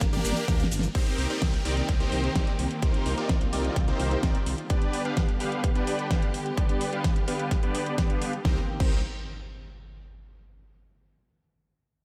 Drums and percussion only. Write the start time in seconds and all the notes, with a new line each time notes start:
0.01 kick, snare, closed hi-hat, shaker
0.13 snare, closed hi-hat, shaker
0.25 open hi-hat, ride, shaker
0.33 snare, closed hi-hat
0.37 shaker
0.48 kick, snare, closed hi-hat, shaker
0.60 snare, closed hi-hat, shaker
0.71 open hi-hat, ride, shaker
0.79 snare, closed hi-hat
0.83 shaker
0.95 kick, closed hi-hat
1.07 closed hi-hat
1.18 open hi-hat
1.30 closed hi-hat
1.42 kick, snare, closed hi-hat
1.54 closed hi-hat
1.65 open hi-hat
1.77 closed hi-hat
1.89 kick, closed hi-hat
2.00 closed hi-hat
2.12 open hi-hat
2.24 closed hi-hat
2.35 kick, snare, closed hi-hat
2.47 closed hi-hat
2.59 open hi-hat
2.71 closed hi-hat
2.82 kick, closed hi-hat
2.94 closed hi-hat
3.06 open hi-hat
3.18 closed hi-hat
3.29 kick, snare, closed hi-hat
3.41 closed hi-hat
3.53 open hi-hat
3.65 closed hi-hat
3.76 kick, snare, closed hi-hat
3.88 closed hi-hat
4.00 open hi-hat
4.11 closed hi-hat
4.23 kick, snare, closed hi-hat
4.35 closed hi-hat
4.46 open hi-hat
4.58 closed hi-hat
4.70 kick, closed hi-hat
4.82 closed hi-hat
4.93 open hi-hat
5.05 closed hi-hat
5.17 kick, snare, closed hi-hat
5.29 closed hi-hat
5.40 open hi-hat
5.52 closed hi-hat
5.64 kick, closed hi-hat
5.75 closed hi-hat
5.87 open hi-hat
5.99 closed hi-hat
6.11 kick, snare, closed hi-hat
6.22 closed hi-hat
6.34 open hi-hat
6.46 closed hi-hat
6.57 kick, closed hi-hat
6.69 closed hi-hat
6.81 open hi-hat
6.93 closed hi-hat
7.04 kick, snare, closed hi-hat
7.16 closed hi-hat
7.28 open hi-hat
7.39 closed hi-hat
7.51 kick, snare, closed hi-hat
7.63 closed hi-hat
7.75 open hi-hat
7.86 closed hi-hat
7.98 kick, snare, closed hi-hat
8.10 closed hi-hat
8.22 open hi-hat
8.33 closed hi-hat
8.45 kick, snare
8.80 kick, crash